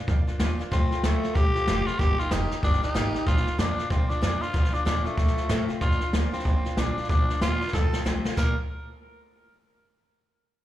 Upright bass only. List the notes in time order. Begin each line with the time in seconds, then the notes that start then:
0.08 F2
0.28 muted upright bass stroke
0.40 D#2
0.60 muted upright bass stroke
0.72 F2
0.92 muted upright bass stroke
1.04 D2
1.23 muted upright bass stroke
1.35 C2
1.55 muted upright bass stroke
1.67 F1
1.87 muted upright bass stroke
1.99 G1
2.19 muted upright bass stroke
2.32 F1
2.51 muted upright bass stroke
2.63 G1
2.83 muted upright bass stroke
2.95 G#1
3.14 muted upright bass stroke
3.26 A#1
3.47 muted upright bass stroke
3.59 F2
3.78 muted upright bass stroke
3.90 D2
4.10 muted upright bass stroke
4.22 F2
4.42 muted upright bass stroke
4.54 D2
4.74 muted upright bass stroke
4.86 D#2
5.06 muted upright bass stroke
5.18 F2
5.37 muted upright bass stroke
5.50 A2
5.69 muted upright bass stroke
5.81 F2
6.01 muted upright bass stroke
6.13 D2
6.33 muted upright bass stroke
6.45 A#1
6.65 muted upright bass stroke
6.78 C2
6.97 muted upright bass stroke
7.09 D2
7.29 muted upright bass stroke
7.42 D#2
7.61 muted upright bass stroke
7.73 F2
7.93 muted upright bass stroke
8.06 C2
8.25 muted upright bass stroke
8.37 A#1